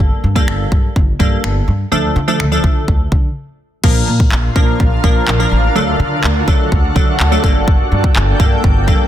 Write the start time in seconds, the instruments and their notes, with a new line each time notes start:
Already playing: synth stab G3 A#3 D4 A4
0.00 kick
0.24 upright bass G2
0.35 synth stab G3 A#3 D4 A4, kick
0.48 upright bass G1, finger snap
0.72 upright bass G2, kick
0.96 upright bass G1, kick
1.19 upright bass G2, synth stab G3 A#3 D4 A4, kick
1.44 upright bass G1, finger snap
1.68 upright bass G2
1.92 upright bass D2, synth stab F3 A3 D4 A4
2.16 upright bass D3
2.28 synth stab F3 A3 D4 A4
2.40 upright bass D2, finger snap
2.52 synth stab F3 A3 D4 A4
2.64 upright bass D3, kick
2.88 upright bass D2, kick
3.12 upright bass D3, kick
3.84 upright bass A#1, synth stab F3 A#3 D4 A#4, ambient pad D4 F4 A#4 F5, kick, crash
4.08 upright bass A#2
4.20 kick
4.32 upright bass A#1, clap
4.56 upright bass A#2, synth stab F3 A#3 D4 A#4, kick
4.80 upright bass A#1, kick
5.04 upright bass A#2, synth stab F3 A#3 D4 A#4, kick
5.28 upright bass A#1, clap
5.39 synth stab F3 A#3 D4 A#4
5.51 upright bass A1
5.75 upright bass D2, synth stab F#3 A3 D4 A4, ambient pad F#4 A4 F#5
6.00 upright bass D3
6.24 upright bass D2, clap
6.47 upright bass D3, synth stab F#3 A3 D4 A4, kick
6.72 upright bass D2, kick
6.95 upright bass D3, synth stab F#3 A3 D4 A4, kick
7.20 upright bass D2, clap
7.32 synth stab F#3 A3 D4 A4
7.44 upright bass G1, synth stab G3 A#3 D4 A4, ambient pad A#3 G5, kick
7.68 kick
7.92 upright bass G2
8.04 kick
8.16 upright bass G1, clap
8.39 upright bass G2, synth stab G3 A#3 D4 A4, kick
8.64 upright bass G1, kick
8.87 upright bass G2, synth stab G3 A#3 D4 A4, kick